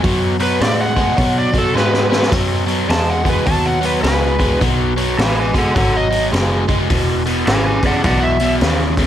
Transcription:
0.04 F#2 B2 F#3, kick, open hi-hat
0.40 B2 F#3 B4, open hi-hat
0.60 A2 B2 G#3 D5, snare, open hi-hat
0.81 F#5
0.96 B2 G#3, kick, open hi-hat
1.17 B2 F#3, kick, open hi-hat
1.38 D5
1.53 B2 F#3, kick, open hi-hat
1.58 A4
1.74 G#2 B2 G#3 B4, snare
1.94 snare
2.10 B2 G#3, snare
2.22 snare
2.31 F#2 B2 F#3, kick, open hi-hat, splash
2.66 B2 F#3, open hi-hat
2.88 E2 B2 G#3 A5, snare, open hi-hat
3.10 F#5
3.24 B2 G#3, kick, open hi-hat
3.29 B4
3.46 D#2 B2 F#3 A5, kick, open hi-hat
3.66 F#5
3.81 B2 F#3, open hi-hat
3.85 B4
4.03 C#2 B2 G#3 B4, snare, open hi-hat
4.39 B2 G#3, kick, open hi-hat
4.60 B1 B2 F#3, kick, open hi-hat
4.96 B2 F#3, open hi-hat
5.18 A1 B2 G#3 B4 G#5, snare, open hi-hat
5.39 B4 G#5
5.54 B2 G#3, muted picked electric bass stroke, kick, open hi-hat
5.58 A4 F#5
5.75 G#1 B2 F#3 A4 F#5, kick, open hi-hat
5.97 D#5
6.11 B2 F#3, open hi-hat
6.32 F#1 B2 G#3, snare, open hi-hat
6.68 B2 G#3, kick, open hi-hat
6.90 E1 E2 B2, kick, open hi-hat
7.26 E2 B2, open hi-hat
7.47 G#1 E2 C#3 B4 G#5, snare, open hi-hat
7.66 B4 G#5
7.83 E2 C#3 D5 F#5, muted picked electric bass stroke, kick, open hi-hat
8.04 B1 E2 B2 D5 F#5, kick, open hi-hat
8.23 E5
8.40 E2 B2, open hi-hat
8.61 D#2 E2 C#3, snare, open hi-hat
8.97 E2 C#3, kick, open hi-hat

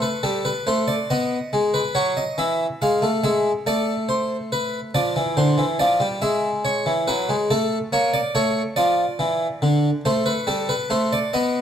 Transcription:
0.02 B4
0.23 G3 A4
0.45 B4
0.67 A3 C5
0.88 D5
1.10 B3 D#5
1.53 G#3
1.74 B4
1.95 F#3 C#5
2.17 D#5
2.38 E3 E5
2.82 G#3 F5
3.02 A3
3.24 G#3 E5
3.67 A3 D5
4.09 C5
4.52 B4
4.95 F3 D5
5.16 E3
5.37 D3 C5
5.58 E3
5.79 F3 D5
6.00 G3
6.22 G#3 E5
6.65 C#5
6.86 E3
7.08 F#3 B4
7.29 G#3
7.50 A3 A4
7.92 A#3 C#5
8.14 D5
8.35 A3 C#5
8.76 F3 D5
9.19 E3
9.62 D3
10.05 A3 C5
10.26 B4
10.47 G3 A4
10.69 B4
10.90 A3 C5
11.13 D5
11.33 B3 D#5

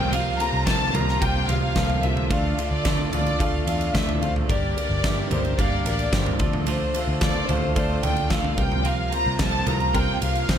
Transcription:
Already playing: C2 C3 G3 A#3 C4 F4 G4 A#4 G5
0.12 C3 F3 G3 C4 F4 A#4 F5, ride
0.38 G3 A#3 C4 F4 G4 A4 A#4 A#5, ride
0.53 C2
0.66 C2 C3 F3 G3 A#3 C4 F4 G4 A4 A#4 A5, kick, snare, ride
0.93 C2 G3 A#3 C4 F4 G4 A#4 A#5, floor tom, ride
1.08 snare
1.19 C2 G3 A#3 C4 F4 G4 A#4 G5, kick, ride
1.23 C5
1.47 C2 G3 A#3 C4 F4 G4 A#4 F5, floor tom, ride
1.75 C2 C3 F3 G3 A#3 C4 F4 G4 A4 A#4, kick, snare, ride
1.90 floor tom
2.02 C2 G3 A#3 C4 F4 G4 A4 A#4 E5, ride
2.17 floor tom
2.30 D2 D3 A3 D4 F4 A4 D5 F5, kick, ride
2.57 A3 D4 F4 A4 F5, ride
2.71 D2 D5
2.85 D2 D3 A3 D4 F4 A4 D5, kick, snare, ride
3.12 D2 A3 D4 F4 A4 D5 F5, floor tom, ride
3.26 ride
3.39 D2 A3 D4 F4 A4 D5 F5, kick, ride
3.66 E2 A3 D4 F4 A4 D5 F5, ride
3.81 ride
3.94 D2 D3 A3 D4 F4 A4 E5, kick, snare, ride
4.09 floor tom
4.21 D2 A3 D4 F4 A4 C5 F5, ride
4.36 floor tom
4.48 G1 G2 G3 A#3 D4 G4 A#4 D5, kick, ride
4.76 A#3 D4 G4 A#4 D5, ride
4.90 G1
5.03 G1 G3 A#3 D4 G4 A#4 E5, kick, snare, ride
5.30 G1 A#3 D4 G4 A#4 C5 D5, floor tom, ride
5.35 D4
5.45 ride
5.58 G1 G3 A#3 D4 G4 A#4 D5 F5, kick, ride
5.85 A1 A#3 D4 G4 A#4 D5, ride
5.99 ride
6.13 G1 G3 A#3 D4 G4 A#4 C5, kick, snare, ride
6.26 floor tom
6.39 D2 D3 A3 D4 F4 A4 D5, kick, ride
6.43 D4
6.53 floor tom
6.67 D3 A3 D4 F4 A4 C5, ride
6.94 A3 D4 F4 A4 F5, ride
7.08 D2
7.21 D2 D3 A3 D4 F4 A4 C5 D5, kick, snare, ride
7.49 D2 A3 D4 F4 A4 C5 F5, floor tom, ride
7.75 D2 A3 D4 F4 A4 C5 D5, kick, ride
8.03 D2 A3 D4 F4 A4 D5 G5, floor tom, ride
8.16 ride
8.30 D2 D3 A3 D4 F4 A4 D5 F5, kick, snare, ride
8.44 floor tom
8.57 C2 C3 G3 A#3 C4 F4 G4 A#4 G5, kick, ride
8.72 floor tom
8.84 C3 F3 G3 C4 F4 A#4 F5, ride
9.12 G3 A#3 C4 F4 G4 A#4 C5 A#5, ride
9.26 C2
9.38 C2 C3 F3 G3 A#3 C4 F4 G4 A4 A#4 A5, kick, snare, ride
9.66 C2 G3 A#3 C4 F4 G4 A#4, floor tom, ride
9.70 A#5
9.80 ride
9.93 C2 G3 A#3 C4 F4 G4 A#4 G5, kick, ride
10.21 C2 G3 A#3 C4 F4 G4 A#4 F5, ride
10.35 ride
10.48 C2 C3 F3 G3 A#3 C4 F4 G4 A#4 C5, kick, snare, ride

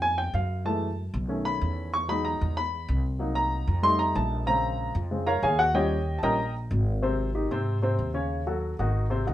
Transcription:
Already playing: F2
0.02 G#5
0.18 G5
0.34 F#2 F5
0.65 E3 G#3 A3 A5
1.14 B1
1.28 D#3 A3 C#4
1.45 B5
1.61 E2
1.94 C#6
2.08 F#3 G#3 D#4 B5
2.25 A#5
2.41 E2
2.57 B5
2.89 C2
3.19 F#3 A#3 D#4
3.35 A#5
3.67 F2
3.82 G3 A3 D#4 C6
3.99 A#5
4.15 A#1 A5
4.46 C#3 G#3 C4 A#5
4.95 F2
5.11 C#3 G#3 C4
5.27 A#4 C#5 F5 A#5
5.43 D#2 G#4 C#5 F5 G#5
5.59 F#4 F#5
5.74 F3 G3 C#4 G4 C#5 D#5 G5
6.19 F3 A5
6.23 A#1 G3 C#4 A#4 D#5 G5 A#5
6.71 G#1
7.03 C3 C4 C5
7.35 D#3 D#4 G4
7.51 G#2 C3 C4 C5
7.83 C3 C4 C5
7.99 D#2
8.14 C#3 C#4 C#5
8.47 F#3 F#4 A4
8.79 G#1 D#3 D#4 F#4
9.10 C3 C4 C5
9.26 C#2 D#3 D#4 F#4

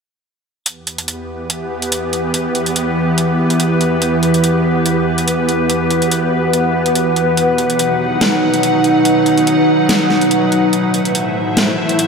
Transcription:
0.66 E2 E3 B3 E4 G4 B4, closed hi-hat
0.87 closed hi-hat
0.98 B4, closed hi-hat
1.08 closed hi-hat
1.50 closed hi-hat
1.60 G5
1.82 closed hi-hat
1.92 closed hi-hat
2.13 closed hi-hat
2.34 closed hi-hat
2.55 closed hi-hat
2.66 closed hi-hat
2.76 closed hi-hat
3.18 closed hi-hat
3.50 closed hi-hat
3.60 closed hi-hat
3.81 closed hi-hat
4.02 closed hi-hat
4.23 closed hi-hat
4.34 closed hi-hat
4.44 closed hi-hat
4.86 closed hi-hat
5.01 F#5
5.18 closed hi-hat
5.28 closed hi-hat
5.49 closed hi-hat
5.70 closed hi-hat
5.91 closed hi-hat
6.02 closed hi-hat
6.12 closed hi-hat
6.53 closed hi-hat
6.86 closed hi-hat
6.95 closed hi-hat
7.16 closed hi-hat
7.37 B2 F#3 D#4 F#5, closed hi-hat
7.58 closed hi-hat
7.70 closed hi-hat
7.79 closed hi-hat
8.21 snare, closed hi-hat
8.54 closed hi-hat
8.63 closed hi-hat
8.84 closed hi-hat
9.05 closed hi-hat
9.26 closed hi-hat
9.38 closed hi-hat
9.47 closed hi-hat
9.89 snare, closed hi-hat
10.10 snare
10.21 closed hi-hat
10.31 closed hi-hat
10.52 closed hi-hat
10.73 A2 A3 E4 C5 E5, closed hi-hat
10.94 closed hi-hat
11.05 closed hi-hat
11.15 closed hi-hat
11.22 C5
11.48 A5
11.57 snare, closed hi-hat
11.89 closed hi-hat
11.99 closed hi-hat

